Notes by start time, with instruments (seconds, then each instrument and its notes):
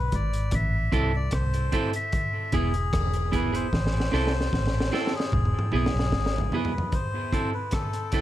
Already playing: melodica B4
0.12 fingered electric bass G#1, melodica D5, kick, closed hi-hat
0.33 closed hi-hat
0.51 fingered electric bass A1, melodica E5, kick, closed hi-hat
0.92 fingered electric bass C2, clean electric guitar C4 E4 A4, kick, closed hi-hat
1.16 melodica D5
1.31 fingered electric bass C2, melodica C5, kick, cross-stick, closed hi-hat
1.54 closed hi-hat
1.72 clean electric guitar C4 E4 A4, kick, closed hi-hat
1.93 melodica E5, closed hi-hat
2.12 kick, closed hi-hat
2.52 fingered electric bass E1, clean electric guitar B3 E4 G#4, melodica G#4, kick, closed hi-hat
2.74 closed hi-hat
2.93 fingered electric bass E1, kick, cross-stick, closed hi-hat
3.13 closed hi-hat
3.32 clean electric guitar B3 E4 G#4, melodica B4, kick, closed hi-hat
3.52 clean electric guitar B3 E4 G#4, melodica C5, closed hi-hat
3.73 fingered electric bass A1, kick, snare
3.87 snare
4.00 snare
4.12 fingered electric bass C2, clean electric guitar C4 E4 A4, snare
4.27 snare
4.41 snare
4.53 fingered electric bass A1, kick, snare
4.67 snare
4.80 snare
4.92 clean electric guitar C4 E4 A4, melodica A4, snare
5.07 snare
5.15 melodica G#4
5.20 snare
5.32 fingered electric bass E1, kick, mid tom
5.45 mid tom
5.59 mid tom
5.72 fingered electric bass B1, clean electric guitar B3 E4 G#4, melodica G#4, mid tom
5.86 snare
5.94 fingered electric bass B1
5.99 snare
6.12 fingered electric bass G#1, kick, snare
6.26 snare
6.38 floor tom
6.52 clean electric guitar B3 E4 G#4, melodica B4, floor tom
6.65 floor tom
6.78 floor tom
6.92 melodica C5, kick, closed hi-hat
7.32 clean electric guitar C4 E4 A4, kick, closed hi-hat
7.54 melodica B4
7.71 melodica A4, kick, cross-stick, closed hi-hat
7.93 closed hi-hat
8.12 clean electric guitar C4 E4 A4, kick, closed hi-hat